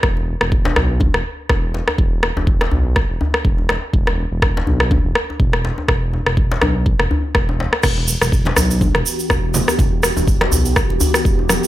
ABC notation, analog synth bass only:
X:1
M:4/4
L:1/16
Q:"Swing 16ths" 1/4=123
K:Em
V:1 name="Analog synth bass" clef=bass
E,,,3 E,,,3 B,,,3 E,,, z2 E,,,3 z | E,,,3 E,,,3 B,,,3 E,,, z2 E,,,3 z | E,,,3 E,,,3 B,,,3 E,,, z2 E,,,3 z | E,,,3 E,,,3 B,,,3 E,,, z2 E,,,3 z |
E,,,3 E,,,3 B,,,3 E,,, z2 E,,,3 z | E,,,3 E,,,3 B,,,3 E,,, z2 E,,,3 z |]